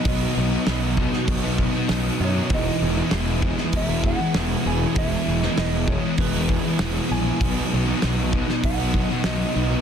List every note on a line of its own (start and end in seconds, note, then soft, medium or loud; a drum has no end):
0.00 2.47 B3 medium
0.00 2.47 F#4 medium
0.00 2.48 D#5 medium
0.05 0.24 B1 loud
0.05 0.51 B2 medium
0.05 0.36 B2 medium
0.05 0.51 D#3 loud
0.05 0.22 F#3 medium
0.05 0.38 F#3 medium
0.05 0.22 B3 loud
0.05 0.40 B3 loud
0.05 0.20 D#4 medium
0.05 1.87 D#5 medium
0.05 kick loud
0.05 open hi-hat medium
0.21 0.52 F#3 medium
0.21 0.52 B3 medium
0.21 0.50 D#4 medium
0.37 0.56 B1 medium
0.37 0.64 B2 medium
0.37 0.53 F#3 medium
0.37 0.50 B3 medium
0.51 0.66 F#3 medium
0.51 0.69 B3 medium
0.51 0.67 B3 medium
0.51 0.68 D#4 medium
0.66 1.05 B1 medium
0.66 0.96 B2 medium
0.66 1.28 B2 medium
0.66 0.94 D#3 medium
0.66 0.97 F#3 loud
0.66 0.96 F#3 loud
0.66 0.98 B3 loud
0.66 0.99 B3 loud
0.66 0.98 D#4 loud
0.66 snare loud
0.66 open hi-hat medium
0.96 1.43 B2 medium
0.96 1.43 D#3 medium
0.96 1.14 F#3 medium
0.96 1.12 F#3 medium
0.96 1.13 B3 medium
0.96 1.11 D#4 medium
0.96 kick medium
1.00 1.12 B3 medium
1.12 1.43 F#3 medium
1.12 1.43 B3 medium
1.12 1.41 D#4 medium
1.12 muted distorted electric guitar stroke soft
1.12 snare soft
1.28 1.66 B1 medium
1.28 kick loud
1.28 open hi-hat medium
1.42 1.56 F#3 medium
1.42 1.61 B3 medium
1.42 1.58 B3 medium
1.42 1.59 D#4 medium
1.47 1.58 F#3 medium
1.57 1.88 B2 medium
1.57 1.86 D#3 medium
1.57 1.74 F#3 medium
1.57 1.74 B3 medium
1.57 1.72 D#4 medium
1.57 kick medium
1.61 1.74 B3 medium
1.73 1.87 F#3 medium
1.73 1.88 B3 medium
1.73 1.89 D#4 medium
1.73 muted distorted electric guitar stroke medium
1.87 2.09 B1 medium
1.87 2.48 B2 medium
1.87 2.49 B2 medium
1.87 2.17 D#3 medium
1.87 2.18 F#3 medium
1.87 2.20 B3 medium
1.87 2.20 D#4 medium
1.87 snare loud
1.87 open hi-hat medium
1.91 2.37 F#3 loud
1.91 2.35 B3 loud
2.18 2.39 F#2 medium
2.18 2.48 D#3 medium
2.18 2.35 F#3 medium
2.18 2.35 B3 medium
2.18 2.33 D#4 medium
2.25 2.54 C#5 medium
2.34 2.50 F#3 medium
2.34 5.85 B3 medium
2.34 2.50 B3 medium
2.34 2.51 D#4 medium
2.38 2.50 F#3 medium
2.49 2.69 E1 loud
2.49 2.80 E2 medium
2.49 2.81 B2 medium
2.49 3.10 E3 medium
2.49 7.38 E3 medium
2.49 2.65 G#3 medium
2.49 2.64 B3 loud
2.49 2.63 E4 loud
2.49 7.38 G#4 medium
2.49 kick loud
2.49 open hi-hat medium
2.54 2.83 E3 medium
2.54 3.76 D#5 loud
2.63 2.98 G#3 medium
2.63 2.97 B3 medium
2.63 2.95 E4 medium
2.80 3.01 E1 medium
2.80 3.11 E2 medium
2.80 2.98 B2 medium
2.80 2.96 E3 medium
2.96 3.14 E3 medium
2.96 3.12 G#3 medium
2.96 3.13 B3 medium
2.96 3.13 E4 medium
3.00 3.13 B2 medium
3.11 3.50 E1 loud
3.11 3.42 E2 medium
3.11 3.43 B2 medium
3.11 3.42 E3 loud
3.11 3.46 E3 medium
3.11 3.42 G#3 medium
3.11 3.43 B3 medium
3.11 3.44 E4 loud
3.11 snare loud
3.11 open hi-hat medium
3.42 3.89 E2 medium
3.42 3.59 B2 medium
3.42 3.89 E3 medium
3.42 3.58 E3 medium
3.42 3.58 G#3 medium
3.42 3.58 B3 medium
3.42 3.55 E4 medium
3.42 kick medium
3.56 3.89 G#3 medium
3.56 3.88 B3 medium
3.56 3.86 E4 medium
3.56 muted distorted electric guitar stroke soft
3.56 snare soft
3.73 4.11 E1 medium
3.73 4.06 E5 loud
3.73 kick medium
3.73 open hi-hat medium
3.88 4.06 E3 medium
3.88 4.03 G#3 medium
3.88 4.04 B3 medium
3.88 4.04 E4 medium
3.92 4.05 B2 medium
4.03 4.34 E2 medium
4.03 4.20 B2 medium
4.03 4.33 E3 medium
4.03 4.19 E3 medium
4.03 4.21 G#3 medium
4.03 4.21 B3 medium
4.03 4.19 E4 medium
4.03 4.67 F#5 loud
4.03 kick medium
4.20 4.34 G#3 medium
4.20 4.35 B3 medium
4.20 4.35 E4 medium
4.20 muted distorted electric guitar stroke medium
4.34 4.54 E1 medium
4.34 4.96 E2 loud
4.34 4.83 B2 loud
4.34 4.64 E3 medium
4.34 4.65 G#3 medium
4.34 4.66 B3 medium
4.34 4.66 E4 loud
4.34 snare loud
4.34 open hi-hat medium
4.38 4.80 E3 loud
4.65 4.85 E1 medium
4.65 4.94 E3 medium
4.65 4.82 G#3 medium
4.65 4.81 B3 medium
4.65 4.79 E4 medium
4.65 4.98 G#5 medium
4.80 4.98 B2 medium
4.80 5.00 E3 medium
4.80 4.96 G#3 medium
4.80 4.97 B3 medium
4.80 4.97 E4 medium
4.96 5.15 E1 loud
4.96 5.27 E2 medium
4.96 5.28 B2 medium
4.96 5.42 E3 medium
4.96 5.12 G#3 medium
4.96 5.11 B3 loud
4.96 5.09 E4 loud
4.96 5.43 E5 loud
4.96 kick loud
4.96 open hi-hat medium
5.01 5.30 E3 medium
5.10 5.44 G#3 medium
5.10 5.43 B3 medium
5.10 5.42 E4 medium
5.27 5.46 E1 medium
5.27 5.56 E2 medium
5.27 5.45 B2 medium
5.27 5.42 E3 medium
5.42 5.58 B2 medium
5.42 5.60 E3 medium
5.42 5.57 G#3 medium
5.42 5.58 B3 medium
5.42 5.58 E4 medium
5.42 5.58 D#5 loud
5.42 snare soft
5.57 5.96 E1 medium
5.57 5.87 E2 medium
5.57 5.88 B2 medium
5.57 5.86 E3 medium
5.57 5.89 E3 loud
5.57 5.87 G#3 medium
5.57 5.89 B3 medium
5.57 5.89 E4 medium
5.57 5.90 D#5 loud
5.57 snare medium
5.57 open hi-hat medium
5.87 6.34 E2 medium
5.87 6.04 B2 medium
5.87 6.34 E3 medium
5.87 6.03 E3 medium
5.87 6.03 G#3 medium
5.87 6.03 B3 medium
5.87 6.01 E4 medium
5.87 6.19 C#5 medium
5.87 kick medium
6.02 6.35 G#3 medium
6.02 6.34 B3 medium
6.02 6.33 E4 medium
6.02 muted distorted electric guitar stroke soft
6.18 6.57 E1 medium
6.18 7.14 B4 medium
6.18 kick loud
6.18 open hi-hat medium
6.34 6.52 E3 medium
6.34 6.48 G#3 medium
6.34 6.49 B3 medium
6.34 6.50 E4 medium
6.38 6.50 B2 medium
6.47 6.79 E2 medium
6.47 6.77 E3 medium
6.47 6.65 G#3 medium
6.47 6.65 B3 medium
6.47 6.62 E4 medium
6.47 kick medium
6.51 6.66 B2 medium
6.51 6.66 E3 medium
6.64 6.77 G#3 medium
6.64 6.79 B3 medium
6.64 6.79 E4 medium
6.64 muted distorted electric guitar stroke medium
6.78 6.99 E1 loud
6.78 7.40 E2 loud
6.78 7.06 E3 medium
6.78 7.07 G#3 medium
6.78 7.08 B3 medium
6.78 7.08 E4 medium
6.78 snare loud
6.78 open hi-hat medium
6.82 7.28 B2 loud
6.82 7.25 E3 loud
7.07 7.30 A#1 medium
7.07 7.38 E3 medium
7.07 7.25 G#3 medium
7.07 7.25 B3 medium
7.07 7.23 E4 medium
7.12 8.64 G#5 loud
7.24 7.40 E3 medium
7.24 7.40 G#3 medium
7.24 7.40 B3 medium
7.24 7.39 E4 medium
7.29 7.40 B2 medium
7.39 7.60 B1 medium
7.39 7.86 B2 medium
7.39 7.70 B2 medium
7.39 7.87 D#3 medium
7.39 7.55 F#3 medium
7.39 7.72 F#3 loud
7.39 7.55 B3 loud
7.39 9.81 B3 medium
7.39 7.52 D#4 loud
7.39 9.81 F#4 medium
7.39 9.81 D#5 medium
7.39 kick loud
7.39 open hi-hat medium
7.43 7.75 B3 medium
7.53 7.87 F#3 medium
7.53 7.86 B3 medium
7.53 7.84 D#4 medium
7.71 7.92 B1 medium
7.71 8.02 B2 medium
7.71 7.89 F#3 medium
7.71 7.87 B3 medium
7.86 8.00 F#3 medium
7.86 8.02 B3 medium
7.86 8.06 B3 medium
7.86 8.01 D#4 medium
7.90 8.03 F#3 medium
8.00 8.42 B1 medium
8.00 8.63 B2 loud
8.00 8.32 B2 medium
8.00 8.31 D#3 loud
8.00 8.32 F#3 medium
8.00 8.34 B3 loud
8.00 8.33 D#4 medium
8.00 snare loud
8.00 open hi-hat soft
8.05 8.33 F#3 medium
8.05 8.36 B3 loud
8.32 8.79 B2 medium
8.32 8.79 D#3 medium
8.32 8.47 F#3 medium
8.32 8.48 F#3 medium
8.32 8.46 B3 medium
8.32 8.45 D#4 medium
8.32 kick medium
8.36 8.47 B3 loud
8.46 8.79 F#3 medium
8.46 8.78 B3 medium
8.46 8.76 D#4 medium
8.46 muted distorted electric guitar stroke soft
8.46 snare soft
8.64 9.02 B1 medium
8.64 9.25 F#5 medium
8.64 kick loud
8.64 open hi-hat medium
8.77 8.92 F#3 medium
8.77 8.96 B3 medium
8.77 8.93 B3 medium
8.77 8.94 D#4 medium
8.82 8.95 F#3 medium
8.93 9.23 B2 medium
8.93 9.23 D#3 medium
8.93 9.10 F#3 medium
8.93 9.09 F#3 medium
8.93 9.09 B3 medium
8.93 9.07 D#4 medium
8.93 kick medium
8.97 9.08 B3 medium
9.08 9.24 F#3 medium
9.08 9.24 B3 medium
9.08 9.25 D#4 medium
9.08 muted distorted electric guitar stroke soft
9.24 9.44 B1 medium
9.24 9.81 B2 medium
9.24 9.52 D#3 medium
9.24 9.53 F#3 medium
9.24 9.72 F#3 medium
9.24 9.54 B3 medium
9.24 9.69 B3 loud
9.24 9.55 D#4 medium
9.24 9.81 D#5 medium
9.24 snare loud
9.24 open hi-hat medium
9.53 9.75 B1 medium
9.53 9.81 D#3 medium
9.53 9.70 F#3 medium
9.53 9.69 B3 medium
9.53 9.67 D#4 medium
9.69 9.81 F#3 medium
9.69 9.81 B3 medium
9.69 9.81 D#4 medium
9.73 9.81 F#3 medium